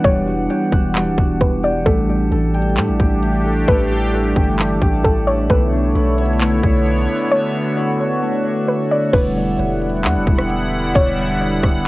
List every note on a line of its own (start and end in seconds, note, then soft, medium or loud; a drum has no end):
0.00 5.46 E3 medium
0.00 5.46 G3 medium
0.00 1.82 B3 medium
0.00 1.82 D4 medium
0.00 0.26 F#4 medium
0.00 0.49 G4 medium
0.00 1.82 G4 medium
0.00 0.56 F#5 medium
0.00 1.82 F#5 medium
0.00 5.46 F#5 medium
0.04 0.48 E1 loud
0.04 0.94 G3 loud
0.04 1.37 C#5 loud
0.04 kick loud
0.04 closed hi-hat medium
0.27 1.18 F#4 medium
0.50 1.63 G4 medium
0.50 closed hi-hat medium
0.72 1.08 E1 loud
0.72 2.15 F#5 medium
0.72 kick loud
0.72 closed hi-hat medium
0.95 1.91 G3 medium
0.95 clap loud
0.95 closed hi-hat medium
1.07 1.17 D1 loud
1.18 1.40 E1 loud
1.18 2.15 F#4 medium
1.18 kick medium
1.41 1.84 E1 loud
1.41 1.63 B4 medium
1.41 kick medium
1.41 closed hi-hat medium
1.63 2.09 G4 medium
1.63 1.85 D5 medium
1.86 2.30 A1 loud
1.86 2.77 A3 medium
1.86 9.10 A3 medium
1.86 9.09 D4 medium
1.86 5.46 D4 medium
1.86 5.46 G4 medium
1.86 3.18 A4 loud
1.86 3.66 A4 medium
1.86 kick loud
1.86 closed hi-hat medium
2.09 2.99 G4 medium
2.32 2.79 A1 loud
2.32 3.45 A4 medium
2.32 closed hi-hat medium
2.54 4.09 G5 medium
2.54 closed hi-hat medium
2.62 closed hi-hat medium
2.69 closed hi-hat soft
2.77 2.90 A2 loud
2.77 3.68 A3 medium
2.77 clap loud
2.77 closed hi-hat medium
2.88 2.99 A1 loud
3.00 3.65 A1 loud
3.00 3.91 G4 medium
3.00 kick loud
3.23 closed hi-hat medium
3.46 4.13 A4 medium
3.68 4.33 A1 loud
3.68 4.59 A3 loud
3.68 5.48 G4 medium
3.68 5.00 B4 loud
3.68 kick loud
3.68 closed hi-hat medium
3.91 4.81 G4 medium
4.14 5.27 A4 medium
4.14 closed hi-hat medium
4.36 4.80 G1 loud
4.36 5.91 G5 medium
4.36 kick medium
4.36 closed hi-hat medium
4.44 closed hi-hat medium
4.51 closed hi-hat soft
4.59 5.50 A3 medium
4.59 clap loud
4.59 closed hi-hat medium
4.81 5.03 A1 loud
4.81 7.17 G4 medium
4.81 kick medium
5.04 5.48 A1 loud
5.04 5.26 A4 medium
5.04 kick medium
5.04 closed hi-hat medium
5.27 7.47 A4 medium
5.27 5.49 C#5 medium
5.50 5.93 B1 loud
5.50 9.10 D3 medium
5.50 6.41 A3 medium
5.50 9.10 B3 medium
5.50 7.30 E4 medium
5.50 9.10 A4 medium
5.50 6.82 B4 loud
5.50 9.10 C#5 medium
5.50 7.30 C#5 medium
5.50 9.10 E5 medium
5.50 kick loud
5.50 closed hi-hat medium
5.72 6.63 D4 medium
5.95 6.61 B1 loud
5.95 7.08 E4 medium
5.95 closed hi-hat medium
6.18 7.60 C#5 medium
6.18 closed hi-hat medium
6.26 closed hi-hat medium
6.33 closed hi-hat soft
6.41 7.31 A3 loud
6.41 clap loud
6.41 closed hi-hat medium
6.63 7.07 B1 loud
6.63 7.54 D4 medium
6.63 kick medium
6.86 closed hi-hat medium
7.09 7.76 E4 medium
7.31 8.22 A3 loud
7.31 9.12 F#4 medium
7.31 8.64 C#5 loud
7.31 9.12 C#5 medium
7.54 8.45 D4 medium
7.77 8.90 E4 loud
7.99 9.91 C#5 medium
8.22 11.55 A3 medium
8.45 11.25 D4 medium
8.68 8.90 B4 medium
8.91 11.52 E4 medium
8.91 9.13 D5 medium
9.13 9.57 E1 loud
9.13 11.88 D3 medium
9.13 11.88 G3 medium
9.13 11.88 B3 medium
9.13 11.88 D4 medium
9.13 11.88 E4 medium
9.13 11.88 G4 medium
9.13 10.46 B4 loud
9.13 11.88 F#5 loud
9.13 11.88 F#5 medium
9.13 kick loud
9.13 closed hi-hat medium
9.13 crash loud
9.59 10.06 E1 loud
9.59 closed hi-hat medium
9.82 closed hi-hat medium
9.89 closed hi-hat medium
9.97 closed hi-hat soft
10.04 10.17 E2 loud
10.04 clap loud
10.04 closed hi-hat medium
10.16 10.27 E1 loud
10.27 10.93 E1 loud
10.27 kick loud
10.38 cross-stick loud
10.50 closed hi-hat medium
10.95 11.61 E1 loud
10.95 11.88 C#5 loud
10.95 kick loud
10.95 closed hi-hat medium
11.41 closed hi-hat medium
11.63 11.88 D1 loud
11.63 kick loud
11.63 cross-stick loud
11.63 closed hi-hat medium
11.71 closed hi-hat medium
11.79 closed hi-hat soft